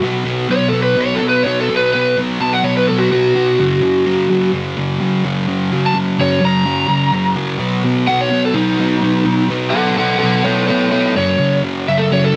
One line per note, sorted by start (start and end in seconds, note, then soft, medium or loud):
0.02 0.24 B2 medium
0.02 0.25 F#3 loud
0.02 0.25 B3 loud
0.25 0.48 B2 medium
0.25 0.49 F#3 medium
0.25 0.50 B3 medium
0.49 0.71 B2 medium
0.49 0.72 F#3 loud
0.49 0.73 B3 loud
0.49 0.67 C#5 loud
0.68 0.95 B2 medium
0.68 0.82 A4 medium
0.73 0.97 F#3 medium
0.73 0.96 B3 loud
0.83 0.98 B4 loud
0.96 1.20 B2 medium
0.96 1.21 F#3 medium
0.96 1.21 B3 loud
1.01 1.15 C#5 loud
1.15 1.29 A4 medium
1.21 1.44 B2 loud
1.21 1.46 F#3 loud
1.21 1.46 B3 loud
1.29 1.45 B4 medium
1.43 1.68 B2 medium
1.43 1.70 F#3 medium
1.43 1.69 B3 loud
1.43 1.59 C#5 loud
1.60 1.76 A4 medium
1.69 1.93 B2 medium
1.69 1.94 F#3 medium
1.69 1.94 B3 loud
1.77 1.91 B4 medium
1.93 2.16 B2 loud
1.93 2.18 F#3 loud
1.93 2.18 B3 loud
1.93 2.15 B4 loud
2.17 2.39 B2 medium
2.17 2.41 F#3 loud
2.17 2.41 B3 medium
2.40 2.63 B2 medium
2.40 2.64 F#3 loud
2.40 2.63 B3 loud
2.40 2.52 A5 loud
2.53 2.64 F#5 medium
2.64 2.88 B2 medium
2.64 2.90 F#3 loud
2.64 2.89 B3 loud
2.64 2.75 C#5 medium
2.77 2.88 B4 medium
2.88 3.09 B2 medium
2.88 3.11 F#3 loud
2.88 3.11 B3 loud
2.88 2.99 A4 medium
2.98 3.10 F#4 loud
3.10 3.34 B2 loud
3.10 3.35 F#3 medium
3.10 3.35 B3 loud
3.10 4.49 F#4 loud
3.35 3.57 B2 medium
3.35 3.60 F#3 loud
3.35 3.57 B3 loud
3.60 3.82 F#2 loud
3.60 3.82 C#3 medium
3.60 3.83 F#3 loud
3.82 4.06 F#2 medium
3.82 4.05 C#3 loud
3.82 4.06 F#3 loud
4.06 4.29 F#2 medium
4.06 4.29 C#3 medium
4.06 4.31 F#3 medium
4.29 4.53 F#2 loud
4.29 4.52 C#3 medium
4.29 4.54 F#3 loud
4.53 4.75 F#2 medium
4.53 4.76 C#3 loud
4.53 4.77 F#3 loud
4.76 4.98 F#2 medium
4.76 4.99 C#3 medium
4.76 5.01 F#3 loud
5.00 5.23 F#2 medium
5.00 5.23 C#3 loud
5.00 5.25 F#3 loud
5.24 5.46 F#2 medium
5.24 5.46 C#3 medium
5.24 5.48 F#3 loud
5.47 5.70 F#2 medium
5.47 5.71 C#3 medium
5.47 5.71 F#3 loud
5.72 5.93 F#2 medium
5.72 5.93 C#3 loud
5.72 5.94 F#3 loud
5.86 5.96 A5 loud
5.94 6.17 F#2 medium
5.94 6.17 C#3 medium
5.94 6.19 F#3 loud
6.18 6.39 F#2 loud
6.18 6.41 C#3 medium
6.18 6.41 F#3 loud
6.18 6.42 C#5 loud
6.41 6.64 F#2 medium
6.41 6.64 C#3 medium
6.41 6.65 F#3 loud
6.45 7.35 A#5 loud
6.65 6.86 F#2 medium
6.65 6.87 C#3 loud
6.65 6.87 F#3 loud
6.87 7.12 F#2 loud
6.87 7.12 C#3 loud
6.87 7.13 F#3 loud
7.13 7.35 F#2 medium
7.13 7.36 C#3 medium
7.13 7.36 F#3 loud
7.36 7.58 F#2 medium
7.36 7.58 C#3 loud
7.36 7.59 F#3 loud
7.59 7.84 B2 medium
7.59 7.84 F#3 loud
7.59 7.85 B3 loud
7.84 8.08 B2 medium
7.84 8.08 F#3 medium
7.84 8.09 B3 loud
8.07 8.29 B2 medium
8.07 8.32 F#3 medium
8.07 8.31 B3 loud
8.07 8.18 F#5 loud
8.21 8.43 C#5 medium
8.31 8.52 B2 medium
8.31 8.54 F#3 medium
8.31 8.54 B3 loud
8.45 8.55 A4 medium
8.53 8.77 B2 loud
8.53 8.79 F#3 medium
8.53 8.79 B3 loud
8.53 9.46 D#4 medium
8.78 9.00 B2 medium
8.78 9.02 F#3 loud
8.78 9.02 B3 loud
9.02 9.24 B2 loud
9.02 9.26 F#3 loud
9.02 9.25 B3 loud
9.25 9.48 B2 medium
9.25 9.49 F#3 medium
9.25 9.49 B3 loud
9.49 9.73 B2 medium
9.49 9.74 F#3 loud
9.49 9.74 B3 loud
9.70 9.96 B2 medium
9.70 9.95 A4 medium
9.70 9.94 F#5 medium
9.74 9.97 F#3 medium
9.74 9.97 B3 medium
9.97 10.21 B2 loud
9.97 10.23 F#3 loud
9.97 10.22 B3 loud
9.97 10.17 A4 medium
9.97 10.18 F#5 loud
10.19 10.44 B2 medium
10.19 10.41 A4 medium
10.19 10.43 F#5 medium
10.23 10.45 F#3 loud
10.23 10.46 B3 loud
10.44 10.69 B2 medium
10.44 10.70 F#3 loud
10.44 10.70 B3 loud
10.44 10.66 A4 medium
10.44 10.67 C#5 medium
10.68 10.91 B2 loud
10.68 10.92 F#3 loud
10.68 10.92 B3 loud
10.68 10.89 A4 medium
10.68 10.90 C#5 medium
10.91 11.14 B2 medium
10.91 11.16 F#3 loud
10.91 11.14 B3 loud
10.91 11.13 A4 medium
10.91 11.14 C#5 medium
11.15 11.38 F#2 loud
11.15 11.38 C#3 medium
11.15 11.39 F#3 loud
11.15 11.61 C#5 medium
11.38 11.62 F#2 loud
11.38 11.62 C#3 loud
11.38 11.63 F#3 loud
11.63 11.87 F#2 medium
11.63 11.88 C#3 medium
11.63 11.89 F#3 loud
11.88 12.11 F#2 medium
11.88 12.11 C#3 loud
11.88 12.12 F#3 loud
11.88 11.98 E5 loud
11.98 12.09 A4 medium
12.11 12.32 F#2 medium
12.11 12.33 C#3 loud
12.11 12.34 F#3 loud
12.11 12.23 C#5 medium
12.25 12.34 A4 medium